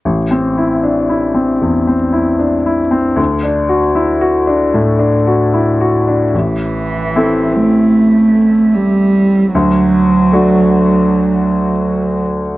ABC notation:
X:1
M:4/4
L:1/8
Q:1/4=76
K:Ador
V:1 name="Grand piano"
(3A,,, C E (3D E C (3E,, C E (3D E C | (3D,, D F (3E F D (3A,, D F (3E F D | A,,,2 [CEA]6 | D,,2 [A,DF]6 |]
V:2 name="Cello" clef=bass
z8 | z8 | E,3 A,3 G,2 | F,6- F, z |]